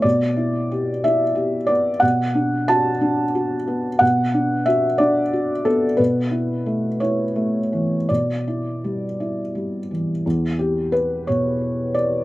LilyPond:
\new Staff \with { instrumentName = "Felt piano" } { \time 6/8 \key e \dorian \tempo 4. = 60 << { d''4. e''4 d''8 | fis''4 a''2 | fis''4 e''8 d''4 a'8 | b'4. cis''4. |
d''2~ d''8 r8 | r8 g'8 b'8 cis''4 d''8 | } \\ { b,8 e'8 g'8 e'8 g'8 b8 | b,8 d'8 fis'8 d'8 fis'8 b8 | b,8 d'8 fis'8 d'8 fis'8 b8 | b,8 e'8 a8 e'8 a8 e8 |
b,8 e'8 g8 e'8 g8 e8 | e,4. b,4. | } >> }